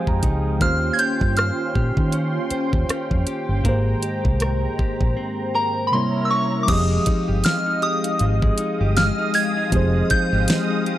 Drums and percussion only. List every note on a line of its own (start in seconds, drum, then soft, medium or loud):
0.07 kick medium
0.23 kick medium
0.23 closed hi-hat medium
0.61 kick loud
0.61 closed hi-hat medium
0.99 closed hi-hat medium
1.21 kick loud
1.37 cross-stick loud
1.37 closed hi-hat medium
1.75 kick medium
1.97 kick loud
2.12 closed hi-hat medium
2.50 closed hi-hat medium
2.73 kick medium
2.89 cross-stick loud
2.89 closed hi-hat medium
3.11 kick medium
3.27 closed hi-hat medium
3.65 kick loud
3.65 closed hi-hat medium
4.03 closed hi-hat medium
4.25 kick medium
4.40 cross-stick loud
4.40 closed hi-hat medium
4.79 kick medium
5.01 kick medium
6.68 kick loud
6.68 closed hi-hat medium
6.68 crash loud
7.06 kick loud
7.06 closed hi-hat medium
7.44 snare loud
7.44 closed hi-hat medium
7.82 closed hi-hat soft
8.04 closed hi-hat medium
8.19 closed hi-hat medium
8.42 kick loud
8.58 closed hi-hat medium
8.97 snare loud
8.97 closed hi-hat medium
9.34 open hi-hat medium
9.72 kick loud
9.72 closed hi-hat medium
10.10 kick loud
10.10 closed hi-hat medium
10.48 snare loud
10.48 closed hi-hat medium
10.86 closed hi-hat soft